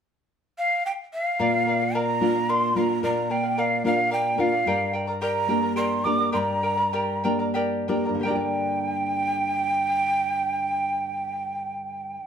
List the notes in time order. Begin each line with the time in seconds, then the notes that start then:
0.58 F5
0.86 G5
1.13 F5
1.39 A#2 A#4 D5 F5
1.67 A#4 D5 F5
1.81 D5 F5
1.95 A#4 D5 F5 A#5
2.21 A#3 D4 F4 A#4 D5 F5
2.35 D5 F5
2.49 A#4 D5 F5 C6
2.75 A#3 D4 F4 A#4 D5 F5 A#5
2.89 D5 F5
3.03 A#2 A#4 D5 F5 A#5
3.30 A#4 D5 F5 G5
3.43 D5 F5
3.58 A#4 D5 F5
3.84 A#3 D4 F4 A#4 D5 F5
3.99 D5 F5
4.11 A#4 D5 F5 G5
4.38 A#3 D4 F4 A#4 D5 F5
4.52 D5 F5
4.66 G2 G4 A#4 D5 G5 A#5
4.93 A#4 D5 G5 A#5
5.07 A#4 D5 A#5
5.21 G4 A#4 D5 G5 A#5
5.48 A#3 D4 G4 A#4 D5 G5 A#5
5.61 A#4 D5 A#5
5.76 G4 A#4 D5 G5 A#5 C6
6.04 A#3 D4 G4 A#4 D5 G5 A#5 D6
6.19 A#4 D5 A#5
6.32 G2 G4 A#4 D5 G5 A#5 C6
6.37 A#5
6.63 A#4 D5 G5 A#5
6.77 A#4 D5 A#5
6.93 G4 A#4 D5 G5 A#5
7.24 A#3 D4 G4 A#4 D5 G5 A#5
7.39 A#4 D5 A#5
7.54 G4 A#4 D5 G5 A#5
7.88 A#3 D4 G4 A#4 D5 G5 A#5
8.05 G2 A#4 D5 A#5
8.14 D3
8.20 A#3 G4 G5
8.24 D4 A#4 D5 G5
8.28 G4 A#5
8.35 D5